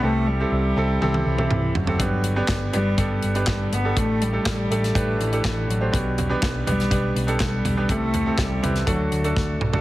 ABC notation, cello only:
X:1
M:4/4
L:1/8
Q:1/4=122
K:G
V:1 name="Cello" clef=bass
A, G,4 E,2 F,- | F,2 z G,2 z G, B, | A, G,4 E,2 F,- | F,2 z G,2 z G,2 |
A,2 G,2 F,2 z2 |]